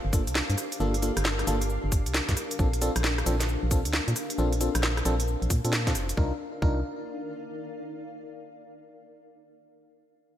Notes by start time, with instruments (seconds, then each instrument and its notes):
Already playing: ambient pad D4 G4 A#4 C5 F5
0.05 fm bass G1
0.13 fm electric piano A#3 D4 F4 A4, kick, open hi-hat, cabasa
0.27 fm bass C2, closed hi-hat, cabasa
0.35 snare, cabasa
0.50 fm bass G2, closed hi-hat
0.58 cross-stick, open hi-hat, cabasa
0.72 closed hi-hat, cabasa
0.80 fm bass G1, fm electric piano A#3 D4 F4 A4, cabasa
0.94 closed hi-hat
1.02 fm electric piano A#3 D4 F4 A4, open hi-hat, cabasa
1.17 fm bass G1, cross-stick, closed hi-hat, cabasa
1.25 snare, cabasa
1.39 cross-stick, closed hi-hat
1.47 fm bass G1, fm electric piano A#3 D4 F4 A4, open hi-hat, cabasa
1.62 closed hi-hat, cabasa
1.70 cabasa
1.84 fm bass G1
1.92 kick, open hi-hat, cabasa
2.06 fm bass C2, closed hi-hat, cabasa
2.14 snare, open hi-hat, cabasa
2.29 fm bass G2, kick, snare, closed hi-hat
2.37 cross-stick, open hi-hat, cabasa
2.51 closed hi-hat, cabasa
2.59 fm bass A#1, fm electric piano C4 D4 F4 A4, kick, cabasa
2.73 closed hi-hat
2.82 fm electric piano C4 D4 F4 A4, open hi-hat, cabasa
2.96 fm bass A#1, cross-stick, closed hi-hat, cabasa
3.04 snare, cabasa
3.18 cross-stick, closed hi-hat
3.26 fm bass A#1, fm electric piano C4 D4 F4 A4, open hi-hat, cabasa
3.40 snare, closed hi-hat, cabasa
3.49 cabasa
3.63 fm bass A#1
3.71 fm electric piano C4 D4 F4 A4, kick, open hi-hat, cabasa
3.85 fm bass D2, closed hi-hat, cabasa
3.93 snare, cabasa
4.08 fm bass A#2, closed hi-hat
4.16 cross-stick, open hi-hat, cabasa
4.30 closed hi-hat, cabasa
4.38 fm bass A#1, fm electric piano C4 D4 F4 A4, cabasa
4.53 closed hi-hat
4.61 fm electric piano C4 D4 F4 A4, open hi-hat, cabasa
4.75 fm bass A#1, cross-stick, closed hi-hat, cabasa
4.83 snare, cabasa
4.97 cross-stick, closed hi-hat
5.05 fm bass A#1, fm electric piano C4 D4 F4 A4, open hi-hat, cabasa
5.20 closed hi-hat, cabasa
5.28 cabasa
5.42 fm bass A#1, closed hi-hat
5.50 fm bass A#2, kick, open hi-hat, cabasa
5.65 fm bass A#2, fm electric piano C4 D4 F4 A4, closed hi-hat, cabasa
5.73 snare, open hi-hat, cabasa
5.87 fm electric piano C4 D4 F4 A4, kick, snare, closed hi-hat
5.95 fm bass F1, cross-stick, open hi-hat, cabasa
6.09 closed hi-hat, cabasa
6.17 fm bass C2, fm electric piano D4 D#4 F4 A#4, ambient pad D#4, kick
6.26 ambient pad A#4
6.33 ambient pad D5
6.38 ambient pad F5
6.62 fm bass C2, fm electric piano D4 D#4 F4 A#4, kick